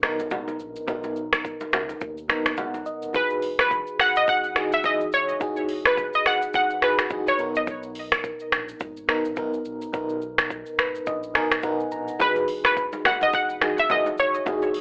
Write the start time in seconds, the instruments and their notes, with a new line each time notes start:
Already playing: fm electric piano B2 B3 D#4 A#4
0.02 fm electric piano B2 B3 D#4 A#4, finger snap, cross-stick, high conga, shaker
0.19 sub bass B1, high conga, shaker
0.31 kick, low conga, shaker
0.48 high conga, shaker
0.59 sub bass A#1, shaker
0.76 shaker
0.87 sub bass B1, fm electric piano B2 B3 D#4 A#4, kick, low conga, shaker
1.04 high conga, shaker
1.16 shaker
1.33 finger snap, kick, cross-stick, high conga, shaker
1.45 kick, shaker
1.60 high conga, shaker
1.73 sub bass C#2, finger snap, cross-stick, low conga, shaker
1.89 high conga, shaker
2.01 sub bass D#2, kick, shaker
2.18 shaker
2.28 fm electric piano B2 B3 D#4 A#4, finger snap, cross-stick, high conga, shaker
2.46 sub bass D#2, finger snap, cross-stick, high conga, shaker
2.57 fm electric piano F#5, kick, low conga, shaker
2.74 sub bass B1, high conga, shaker
2.86 fm electric piano D#5, shaker
3.02 sub bass D#1, shaker
3.13 sub bass E1, fm electric piano E3 D#4 F#4 G#4, synth pluck B4, kick, shaker
3.30 shaker
3.42 open hi-hat, shaker
3.59 synth pluck B4, finger snap, kick, cross-stick, shaker
3.71 kick, shaker
3.87 shaker
3.99 sub bass D#1, synth pluck F#5, finger snap, cross-stick, shaker
4.16 synth pluck D#5, shaker
4.27 sub bass E1, synth pluck F#5, kick, shaker
4.44 shaker
4.55 fm electric piano E3 D#4 F#4 G#4, finger snap, cross-stick, shaker
4.72 sub bass F#1, synth pluck E5, shaker
4.83 sub bass F#1, fm electric piano E3 D#4 F#4 G#4, synth pluck D#5, kick, shaker
5.01 shaker
5.12 sub bass E1, synth pluck C#5, shaker
5.29 shaker
5.40 sub bass E1, fm electric piano E3 D#4 F#4 G#4, kick, shaker
5.56 shaker
5.69 open hi-hat, shaker
5.85 synth pluck B4, finger snap, kick, cross-stick, shaker
5.97 kick, shaker
6.13 synth pluck D#5, shaker
6.26 sub bass D#1, synth pluck F#5, finger snap, cross-stick, shaker
6.42 shaker
6.54 sub bass E1, synth pluck F#5, kick, shaker
6.70 shaker
6.81 fm electric piano E3 D#4 F#4 G#4, synth pluck B4, finger snap, cross-stick, shaker
6.99 sub bass F#1, finger snap, cross-stick, shaker
7.09 sub bass F#1, fm electric piano E3 D#4 F#4 G#4, kick, shaker
7.27 synth pluck C#5, shaker
7.38 sub bass B1, fm electric piano B2 B3 D#4 A#4, shaker
7.55 synth pluck D#5, shaker
7.67 kick, shaker
7.83 shaker
7.95 open hi-hat, shaker
8.12 finger snap, kick, cross-stick, shaker
8.24 kick, shaker
8.40 shaker
8.52 sub bass A#1, finger snap, cross-stick, shaker
8.69 shaker
8.80 sub bass G#1, kick, shaker
8.97 shaker
9.08 fm electric piano B2 B3 D#4 A#4, finger snap, cross-stick, shaker
9.25 sub bass A#1, shaker
9.36 sub bass B1, fm electric piano B2 B3 D#4 A#4, kick, shaker
9.54 shaker
9.65 sub bass B1, shaker
9.82 shaker
9.92 sub bass B1, fm electric piano B2 B3 D#4 A#4, kick, shaker
10.09 shaker
10.22 shaker
10.38 finger snap, kick, cross-stick, shaker
10.50 kick, shaker
10.66 shaker
10.79 sub bass G#1, fm electric piano B4, finger snap, cross-stick, shaker
10.95 shaker
11.06 sub bass A#1, fm electric piano D#5, kick, shaker
11.23 shaker
11.34 fm electric piano B2 B3 D#4 A#4 G#5, finger snap, cross-stick, shaker
11.51 sub bass B1, finger snap, cross-stick, shaker
11.62 sub bass B1, fm electric piano B2 B3 D#4 A#4 F#5, kick, shaker
11.80 shaker
11.91 sub bass A#1, fm electric piano A#5, shaker
12.08 shaker
12.19 sub bass E1, fm electric piano E3 D#4 F#4 G#4, synth pluck B4, kick, low conga, shaker
12.36 high conga, shaker
12.48 open hi-hat, shaker
12.65 synth pluck B4, finger snap, kick, cross-stick, shaker
12.77 kick, shaker
12.92 high conga, shaker
13.05 sub bass D#1, synth pluck F#5, finger snap, cross-stick, low conga, shaker
13.21 synth pluck D#5, high conga, shaker
13.33 sub bass E1, synth pluck F#5, kick, shaker
13.50 shaker
13.60 fm electric piano E3 D#4 F#4 G#4, finger snap, cross-stick, high conga, shaker
13.78 sub bass F#1, synth pluck E5, high conga, shaker
13.89 sub bass F#1, fm electric piano E3 D#4 F#4 G#4, synth pluck D#5, kick, low conga, shaker
14.06 high conga, shaker
14.18 sub bass E1, synth pluck C#5, shaker
14.34 shaker
14.45 sub bass E1, fm electric piano E3 D#4 F#4 G#4, kick, low conga, shaker
14.62 high conga, shaker
14.74 open hi-hat, shaker